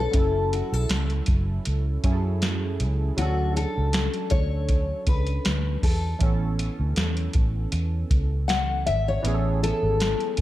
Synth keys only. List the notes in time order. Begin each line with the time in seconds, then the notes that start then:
Already playing: A3 C#4 E4 A#4 B4
0.11 F#3 C#4 E4
0.16 A4
2.04 F#3 C#4 E4 G#4
2.13 A4
3.17 F#3 C#4 D4
3.21 A4
6.19 E3 B3 C#4
6.24 A4
9.22 E3 B3 C#4
9.27 G#4
9.34 A4